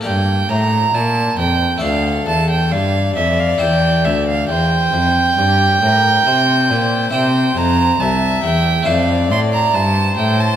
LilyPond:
<<
  \new Staff \with { instrumentName = "Violin" } { \time 4/4 \key c \mixolydian \tempo 4 = 68 g''8 bes''8 a''8 g''8 f''8 a''16 g''16 f''8 e''16 f''16 | g''8 e''16 f''16 g''2. | g''8 bes''8 a''8 g''8 f''8 c'''16 bes''16 a''8 g''16 a''16 | }
  \new Staff \with { instrumentName = "Violin" } { \time 4/4 \key c \mixolydian r2 a'4 d''4~ | d''4 c''4 g'8 bes'8 c''8 c''8~ | c''4 e''4 d''4 c''4 | }
  \new Staff \with { instrumentName = "Harpsichord" } { \time 4/4 \key c \mixolydian <bes g' d''>2 <a a' d''>2 | <e' c''>1 | <e' c''>2 <a e' c''>2 | }
  \new Staff \with { instrumentName = "Harpsichord" } { \clef bass \time 4/4 \key c \mixolydian g,8 a,8 bes,8 f,8 d,8 e,8 g,8 f,8 | e,8 d,8 e,8 f,8 g,8 a,8 c8 bes,8 | c8 f,8 c,8 e,8 f,8 a,8 g,8 a,8 | }
  \new Staff \with { instrumentName = "Cello" } { \clef bass \time 4/4 \key c \mixolydian g,8 a,8 bes,8 f,8 d,8 e,8 g,8 f,8 | e,8 d,8 e,8 f,8 g,8 a,8 c8 bes,8 | c8 f,8 c,8 e,8 f,8 a,8 g,8 a,8 | }
>>